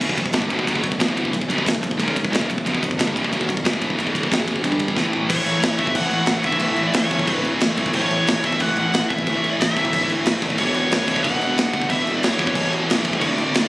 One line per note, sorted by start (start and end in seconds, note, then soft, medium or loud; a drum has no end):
0.00 0.16 B0 medium
0.00 0.16 B1 medium
0.00 0.17 F#2 loud
0.00 0.18 B2 loud
0.00 kick medium
0.00 crash medium
0.00 splash medium
0.09 kick medium
0.17 0.33 B0 medium
0.17 0.31 B1 medium
0.17 0.31 F#2 medium
0.17 kick medium
0.17 ride medium
0.26 kick medium
0.33 0.49 G1 loud
0.33 0.50 G2 loud
0.33 0.51 D3 loud
0.33 0.51 G3 loud
0.33 kick medium
0.33 snare loud
0.33 ride loud
0.42 kick loud
0.50 0.66 B0 loud
0.50 0.66 B1 medium
0.50 0.66 F#2 loud
0.50 0.67 B2 loud
0.50 kick medium
0.50 ride medium
0.59 kick medium
0.67 0.83 F#1 medium
0.67 0.83 F#2 medium
0.67 0.83 C#3 loud
0.67 0.84 F#3 loud
0.67 kick medium
0.67 ride loud
0.76 kick medium
0.83 0.99 B0 medium
0.83 0.97 B1 medium
0.83 0.97 F#2 medium
0.83 kick medium
0.83 ride medium
0.92 kick medium
1.00 1.15 B0 medium
1.00 1.15 B1 medium
1.00 1.16 F#2 loud
1.00 1.15 B2 loud
1.00 kick medium
1.00 snare loud
1.00 ride medium
1.08 kick medium
1.16 1.32 E1 medium
1.16 1.31 E2 medium
1.16 1.32 B2 loud
1.16 1.33 E3 loud
1.16 kick medium
1.16 ride medium
1.25 kick medium
1.32 1.49 B0 medium
1.32 1.46 B1 medium
1.32 1.46 F#2 medium
1.32 kick medium
1.32 ride medium
1.41 kick medium
1.48 1.65 B0 medium
1.48 1.63 B1 medium
1.48 1.63 F#2 medium
1.48 1.66 B2 loud
1.48 kick medium
1.48 ride medium
1.58 kick medium
1.64 1.82 B0 medium
1.64 1.78 B1 medium
1.64 1.78 F#2 medium
1.64 kick loud
1.64 ride loud
1.68 snare loud
1.75 kick medium
1.81 1.98 B0 medium
1.81 1.95 B1 medium
1.81 1.95 F#2 medium
1.81 kick medium
1.81 ride medium
1.91 kick medium
1.97 2.15 C#1 loud
1.97 2.14 C#2 medium
1.97 2.14 G#2 loud
1.97 2.15 C#3 loud
1.97 kick medium
1.97 ride loud
2.08 kick medium
2.16 kick medium
2.16 ride medium
2.25 kick medium
2.30 2.48 C#1 medium
2.30 2.47 C#2 medium
2.30 2.48 G#2 loud
2.30 2.48 C#3 medium
2.30 kick medium
2.34 snare loud
2.34 ride loud
2.41 kick medium
2.49 2.65 B0 medium
2.49 2.62 B1 medium
2.49 2.62 F#2 medium
2.49 kick medium
2.49 ride medium
2.58 kick medium
2.65 2.81 B0 loud
2.65 2.81 B1 loud
2.65 2.81 F#2 loud
2.65 2.82 B2 loud
2.65 kick medium
2.65 ride loud
2.75 kick medium
2.83 2.98 B0 medium
2.83 2.96 B1 medium
2.83 2.96 F#2 medium
2.83 kick medium
2.83 ride medium
2.91 kick loud
2.99 3.14 G1 loud
2.99 3.15 G2 loud
2.99 3.15 D3 loud
2.99 3.16 G3 loud
2.99 kick medium
2.99 snare loud
2.99 ride loud
3.07 kick medium
3.16 3.31 B0 loud
3.16 3.31 B1 medium
3.16 3.31 F#2 medium
3.16 3.32 B2 loud
3.16 kick medium
3.16 ride medium
3.24 kick medium
3.32 3.47 F#1 loud
3.32 3.47 F#2 loud
3.32 3.48 C#3 loud
3.32 3.48 F#3 loud
3.32 kick medium
3.32 ride loud
3.41 kick medium
3.48 3.64 B0 medium
3.48 3.61 B1 medium
3.48 3.61 F#2 medium
3.48 kick medium
3.48 ride medium
3.57 kick medium
3.65 3.80 B0 loud
3.65 3.81 B1 medium
3.65 3.81 F#2 medium
3.65 3.80 B2 loud
3.65 kick medium
3.65 snare loud
3.65 ride medium
3.73 kick medium
3.81 3.97 E1 medium
3.81 3.97 E2 loud
3.81 3.97 B2 loud
3.81 3.98 E3 loud
3.81 kick medium
3.81 ride medium
3.90 kick medium
3.98 4.29 C#1 loud
3.98 4.30 C#2 loud
3.98 4.30 G#2 loud
3.98 4.30 C#3 loud
3.98 kick medium
3.98 ride medium
4.07 kick medium
4.15 kick medium
4.15 ride medium
4.23 kick medium
4.31 4.62 F#1 loud
4.31 4.62 F#2 loud
4.31 4.63 C#3 loud
4.31 4.64 F#3 loud
4.31 kick medium
4.31 snare loud
4.31 ride loud
4.40 kick loud
4.48 kick medium
4.48 ride medium
4.56 kick medium
4.62 4.95 G1 medium
4.62 4.95 G2 loud
4.62 4.96 D3 loud
4.62 4.96 G3 loud
4.62 kick medium
4.62 ride loud
4.72 kick medium
4.79 kick medium
4.79 ride medium
4.88 kick medium
4.96 5.28 A1 medium
4.96 5.28 A2 medium
4.96 5.29 E3 medium
4.96 5.30 A3 medium
4.96 kick medium
4.96 snare medium
5.13 floor tom medium
5.29 5.45 A1 medium
5.29 5.36 A2 medium
5.29 5.38 E3 loud
5.29 5.77 A3 loud
5.29 5.81 C#5 loud
5.29 kick loud
5.29 crash loud
5.29 crash medium
5.36 5.44 A2 medium
5.36 5.45 E3 medium
5.45 5.61 A1 medium
5.45 5.52 A2 medium
5.45 5.53 E3 loud
5.45 crash medium
5.52 5.60 A2 medium
5.52 5.60 E3 medium
5.60 5.78 A1 loud
5.60 5.67 A2 medium
5.60 5.68 E3 loud
5.60 snare loud
5.60 crash medium
5.67 5.74 A2 medium
5.67 5.76 E3 medium
5.74 5.82 A2 medium
5.74 5.84 E3 loud
5.74 6.62 A3 medium
5.74 5.95 E5 loud
5.74 crash medium
5.79 5.94 G1 medium
5.79 kick medium
5.83 5.89 A2 medium
5.83 5.91 E3 medium
5.83 kick medium
5.90 5.97 A2 medium
5.90 5.98 E3 loud
5.95 6.09 A1 loud
5.95 6.04 A2 medium
5.95 6.06 E3 medium
5.95 6.45 F#5 loud
5.95 kick loud
5.95 crash medium
6.04 6.12 A2 medium
6.04 6.14 E3 loud
6.10 6.25 A1 loud
6.10 6.21 A2 medium
6.10 crash medium
6.14 6.21 E3 medium
6.21 6.29 A2 medium
6.21 6.29 E3 loud
6.26 6.43 A1 loud
6.26 6.36 A2 medium
6.26 snare loud
6.26 crash medium
6.30 6.36 E3 medium
6.36 6.43 A2 medium
6.36 6.44 E3 medium
6.43 6.60 G1 loud
6.43 6.51 A2 medium
6.43 6.52 E3 medium
6.43 6.88 E5 loud
6.43 kick medium
6.43 crash medium
6.51 6.59 A2 medium
6.51 6.60 E3 medium
6.51 kick medium
6.59 6.77 A1 medium
6.59 6.68 A2 loud
6.59 6.69 E3 loud
6.59 7.09 A3 loud
6.59 kick medium
6.59 crash medium
6.70 6.77 A2 medium
6.70 6.77 E3 medium
6.76 6.93 A1 medium
6.76 6.83 A2 medium
6.76 6.84 E3 medium
6.76 crash medium
6.84 6.91 A2 medium
6.84 6.90 E3 medium
6.84 6.91 D5 medium
6.91 7.10 A1 loud
6.91 6.98 A2 medium
6.91 6.99 E3 medium
6.91 snare loud
6.91 crash loud
6.97 7.06 A2 medium
6.97 7.08 E3 medium
6.97 7.42 C#5 medium
7.06 7.13 A2 medium
7.06 7.14 E3 loud
7.06 7.96 A3 medium
7.11 7.27 A1 medium
7.11 7.22 A2 medium
7.11 7.22 E3 medium
7.11 kick medium
7.11 crash medium
7.19 7.30 A2 medium
7.19 7.31 E3 loud
7.19 kick medium
7.27 7.59 D1 loud
7.27 7.37 A2 medium
7.27 7.39 E3 medium
7.27 kick loud
7.27 crash medium
7.37 7.44 A2 medium
7.37 7.46 E3 loud
7.44 7.52 A2 medium
7.44 7.53 E3 medium
7.44 crash medium
7.54 7.60 A2 medium
7.54 7.61 E3 loud
7.60 7.76 A1 medium
7.60 7.68 A2 medium
7.60 7.69 E3 medium
7.60 snare loud
7.60 crash medium
7.69 7.76 A2 medium
7.69 7.77 E3 medium
7.76 7.93 C#1 medium
7.76 7.83 A2 medium
7.76 7.84 E3 medium
7.76 kick medium
7.76 crash medium
7.84 7.92 A2 medium
7.84 7.92 E3 medium
7.84 kick medium
7.93 8.10 A1 loud
7.93 8.01 A2 loud
7.93 8.02 E3 loud
7.93 8.46 C#5 loud
7.93 kick loud
7.93 crash loud
7.97 8.42 A3 loud
8.01 8.08 A2 medium
8.01 8.09 E3 medium
8.08 8.27 A1 loud
8.08 8.16 A2 medium
8.08 8.16 E3 medium
8.08 crash medium
8.16 8.24 A2 medium
8.16 8.24 E3 medium
8.24 8.43 A1 loud
8.24 8.32 A2 medium
8.24 8.33 E3 medium
8.24 crash loud
8.29 8.39 A2 medium
8.29 snare loud
8.33 8.40 E3 medium
8.40 8.59 G1 medium
8.40 8.47 A2 medium
8.40 8.48 E3 medium
8.40 9.25 A3 medium
8.40 crash medium
8.44 8.54 A2 medium
8.44 8.60 E5 loud
8.44 kick medium
8.48 8.55 E3 medium
8.52 8.63 A2 medium
8.52 8.63 E3 medium
8.52 kick medium
8.60 8.76 A1 loud
8.60 8.70 E3 medium
8.60 9.11 F#5 loud
8.60 kick loud
8.60 crash medium
8.65 8.70 A2 medium
8.71 8.78 A2 medium
8.71 8.78 E3 medium
8.76 8.93 A1 medium
8.76 8.85 A2 medium
8.76 8.86 E3 medium
8.76 crash medium
8.86 8.93 A2 medium
8.86 8.94 E3 medium
8.93 9.09 A1 medium
8.93 9.01 A2 medium
8.93 9.02 E3 medium
8.93 snare loud
8.93 crash medium
9.02 9.09 A2 medium
9.02 9.10 E3 medium
9.09 9.26 G1 loud
9.09 9.17 A2 medium
9.09 9.17 E3 medium
9.09 9.50 E5 loud
9.09 kick loud
9.09 crash medium
9.18 9.26 A2 medium
9.18 9.25 E3 medium
9.18 kick medium
9.27 9.42 A1 loud
9.27 9.35 A2 medium
9.27 9.35 E3 loud
9.27 9.73 A3 loud
9.27 kick loud
9.27 crash medium
9.36 9.42 A2 medium
9.36 9.43 E3 medium
9.42 9.58 A1 medium
9.42 9.49 A2 medium
9.42 9.50 E3 medium
9.42 crash medium
9.49 9.57 A2 medium
9.49 9.58 E3 medium
9.49 9.54 D5 medium
9.57 9.74 A1 medium
9.57 9.65 A2 medium
9.57 9.66 E3 medium
9.57 10.09 E5 loud
9.57 crash loud
9.62 snare loud
9.66 9.73 A2 medium
9.66 9.73 E3 medium
9.73 9.92 A1 medium
9.73 9.81 A2 medium
9.73 9.81 E3 medium
9.73 10.57 A3 loud
9.73 kick medium
9.77 9.89 E3 medium
9.77 crash medium
9.82 9.87 A2 medium
9.82 kick medium
9.88 9.95 A2 medium
9.88 9.97 E3 loud
9.93 10.24 D1 loud
9.93 10.03 A2 medium
9.93 kick loud
9.93 crash loud
9.98 10.04 E3 medium
10.04 10.11 A2 medium
10.04 10.12 E3 medium
10.10 10.19 A2 medium
10.10 10.20 E3 medium
10.10 crash medium
10.20 10.27 A2 medium
10.20 10.26 E3 loud
10.25 10.41 A1 medium
10.25 10.34 A2 medium
10.25 10.35 E3 medium
10.25 snare loud
10.25 crash loud
10.34 10.42 A2 medium
10.34 10.44 E3 medium
10.42 10.57 C#1 loud
10.42 10.50 A2 medium
10.42 10.51 E3 medium
10.42 kick medium
10.42 crash medium
10.50 10.58 A2 medium
10.50 10.59 E3 medium
10.50 kick medium
10.58 10.73 E1 loud
10.58 10.66 E2 medium
10.58 10.67 B2 loud
10.58 11.05 E3 loud
10.58 11.27 C#5 loud
10.58 kick medium
10.58 crash medium
10.67 10.73 E2 medium
10.67 10.75 B2 medium
10.74 10.89 E1 medium
10.74 10.81 E2 medium
10.74 10.82 B2 medium
10.74 crash medium
10.81 10.88 E2 medium
10.81 10.89 B2 medium
10.88 11.06 E1 loud
10.88 10.96 E2 medium
10.88 10.96 B2 medium
10.88 crash loud
10.93 11.04 B2 medium
10.93 snare loud
10.97 11.03 E2 medium
11.04 11.11 E2 medium
11.04 11.12 B2 loud
11.04 11.88 E3 medium
11.08 11.23 D1 medium
11.08 11.19 E2 medium
11.08 kick medium
11.08 crash medium
11.13 11.19 B2 medium
11.13 kick medium
11.19 11.27 E2 medium
11.19 11.27 B2 medium
11.19 11.91 F#5 loud
11.24 11.38 E1 medium
11.24 11.34 E2 medium
11.24 11.35 B2 medium
11.24 kick loud
11.24 crash loud
11.34 11.41 E2 medium
11.34 11.43 B2 medium
11.39 11.54 E1 loud
11.39 11.49 E2 medium
11.39 crash medium
11.43 11.51 B2 medium
11.50 11.57 E2 medium
11.50 11.57 B2 loud
11.55 11.71 E1 medium
11.55 11.64 E2 medium
11.55 11.65 B2 medium
11.55 crash medium
11.59 snare loud
11.65 11.72 E2 medium
11.65 11.73 B2 medium
11.73 11.89 D2 medium
11.73 11.80 E2 medium
11.73 11.81 B2 medium
11.73 kick medium
11.73 crash medium
11.81 11.88 E2 medium
11.81 11.89 B2 medium
11.81 kick medium
11.89 12.04 E1 loud
11.89 11.97 E2 medium
11.89 11.97 B2 loud
11.89 12.35 E3 loud
11.89 12.15 E5 loud
11.89 kick loud
11.89 crash medium
11.97 12.04 E2 medium
11.97 12.05 B2 medium
12.05 12.20 E1 loud
12.05 12.12 E2 medium
12.05 12.12 B2 medium
12.05 crash medium
12.13 12.19 E2 medium
12.13 12.20 B2 medium
12.13 12.24 D5 medium
12.20 12.37 E1 medium
12.20 12.28 E2 medium
12.20 12.28 B2 loud
12.20 crash loud
12.24 12.73 C#5 medium
12.24 snare loud
12.29 12.35 E2 medium
12.29 12.35 B2 medium
12.35 12.43 E2 medium
12.35 12.43 B2 loud
12.35 13.19 E3 loud
12.39 12.54 E1 medium
12.39 kick medium
12.39 crash medium
12.43 12.52 E2 medium
12.43 12.51 B2 medium
12.43 kick loud
12.51 12.87 A1 loud
12.51 12.59 E2 medium
12.51 12.59 B2 medium
12.55 12.67 E2 medium
12.55 kick loud
12.55 crash medium
12.60 12.67 B2 medium
12.67 12.75 E2 medium
12.67 12.74 B2 loud
12.73 12.82 E2 medium
12.73 12.82 B2 medium
12.73 crash medium
12.83 12.89 E2 medium
12.83 12.89 B2 medium
12.87 13.03 E1 medium
12.87 12.97 E2 medium
12.87 12.97 B2 medium
12.87 snare loud
12.87 crash medium
12.98 13.05 E2 medium
12.98 13.06 B2 medium
13.05 13.21 C#1 medium
13.05 13.13 E2 medium
13.05 13.14 B2 medium
13.05 kick medium
13.05 crash medium
13.13 13.20 E2 medium
13.13 13.21 B2 medium
13.13 kick medium
13.20 13.36 D1 loud
13.20 13.27 D2 loud
13.20 13.29 A2 loud
13.20 13.68 D3 loud
13.20 13.68 D5 loud
13.20 kick medium
13.20 crash medium
13.28 13.36 D2 medium
13.28 13.38 A2 medium
13.37 13.53 D1 medium
13.37 13.44 D2 medium
13.37 13.45 A2 medium
13.37 crash medium
13.44 13.51 D2 medium
13.44 13.52 A2 medium
13.52 13.68 D1 loud
13.52 13.59 D2 medium
13.52 13.60 A2 medium
13.52 crash loud
13.56 13.66 D2 medium
13.56 snare loud
13.60 13.68 A2 medium